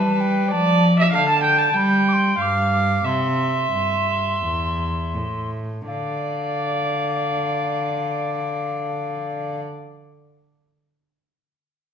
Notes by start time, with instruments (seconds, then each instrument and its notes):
Already playing: cello G3, viola B4, recorder A5
0.20 recorder G5
0.51 cello F3, viola D5, recorder A5
0.99 viola E5
1.13 cello D3, viola F5, recorder A5
1.29 viola A5
1.44 viola G5
1.59 viola A5
1.74 cello G3, viola G5, recorder B5
2.09 recorder D6
2.13 recorder C6
2.39 cello G2, viola F5, recorder D6
2.73 recorder D6
3.04 cello C3, viola E5, recorder C6
3.73 cello G2
4.43 cello E2
5.14 cello A2
5.87 cello D3, viola D5, recorder F5